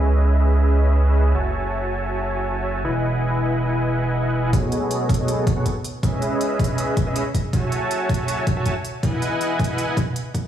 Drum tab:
HH |--------------------------------|--------------------------------|--------------------------------|x---x---x---xx--x---x---x---x---|
BD |--------------------------------|--------------------------------|--------------------------------|o-----------o-------o---o-------|

HH |x---x---x---xx--x---x---x---x---|x---x---x---xx--x---x---x---x---|x---x---x---xx--x---x---x---x---|
BD |o-----------o-------o-------o---|o-----------o-------o---o-------|o-----------o-------o-------o---|